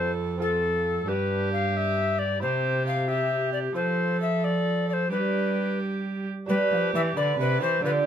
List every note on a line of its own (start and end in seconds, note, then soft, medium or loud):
0.00 1.04 F2 soft
0.00 1.06 F2 medium
0.00 0.36 C4 soft
0.00 0.38 F4 soft
0.00 0.39 A4 soft
0.00 0.40 A4 medium
0.00 0.12 C5 medium
0.38 1.04 C4 soft
0.38 1.05 F4 soft
0.38 1.06 A4 soft
0.38 1.09 A4 medium
0.42 1.10 A4 medium
1.06 2.38 G2 medium
1.06 2.44 G2 medium
1.06 2.37 D4 soft
1.06 2.38 G4 soft
1.06 2.42 G4 medium
1.06 1.52 B4 medium
1.53 1.78 F5 medium
1.77 2.20 E5 medium
2.19 2.42 D5 medium
2.40 3.75 C3 medium
2.40 3.72 C3 soft
2.40 3.05 E4 soft
2.40 3.07 G4 soft
2.40 3.08 G4 medium
2.40 2.86 C5 medium
2.87 3.10 F5 medium
3.07 3.73 E4 soft
3.07 3.74 G4 soft
3.07 3.75 G4 medium
3.07 3.52 E5 medium
3.53 3.59 D5 medium
3.74 5.09 F3 medium
3.74 5.08 F3 soft
3.74 5.07 F4 soft
3.74 5.08 A4 soft
3.74 5.10 A4 medium
3.74 4.20 C5 medium
4.22 4.46 E5 medium
4.44 4.89 D5 medium
4.89 4.94 D5 medium
4.93 5.11 C5 medium
5.10 6.26 G3 medium
5.10 6.25 G3 soft
5.10 6.44 D4 soft
5.10 6.44 G4 soft
5.10 6.26 G4 medium
5.10 5.79 B4 medium
6.46 6.57 G3 medium
6.46 6.69 G3 medium
6.46 7.78 D4 soft
6.46 7.79 G4 soft
6.46 7.18 G4 medium
6.46 6.91 B4 medium
6.71 6.79 F3 medium
6.71 6.92 F3 soft
6.94 7.16 E3 medium
6.94 7.14 E3 medium
6.94 7.01 E5 medium
7.16 7.38 D3 medium
7.16 7.37 D3 medium
7.16 7.84 B4 medium
7.16 7.38 D5 medium
7.39 7.63 C3 medium
7.39 7.60 C3 medium
7.39 7.61 B4 medium
7.61 7.83 E3 medium
7.61 7.82 E3 medium
7.61 7.83 C5 loud
7.81 8.05 D3 medium
7.81 8.04 D3 soft
7.81 8.06 A3 soft
7.81 8.06 D4 soft
7.81 8.06 F4 soft
7.81 8.06 G4 medium
7.85 7.91 B4 loud